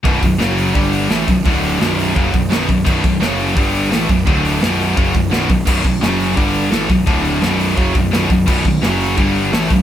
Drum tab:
CC |--------|--------|x-------|--------|
HH |oooooooo|oo-ooooo|-ooooooo|oooooooo|
SD |--o---o-|--o---o-|--o---o-|--o---o-|
BD |oo--o--o|o---oo-o|oo--o--o|o---oo-o|

CC |x-------|--------|x-------|
HH |-ooooooo|oooooooo|-ooooooo|
SD |--o---o-|--o---o-|--o---o-|
BD |oo--o--o|o---oo-o|oo--o--o|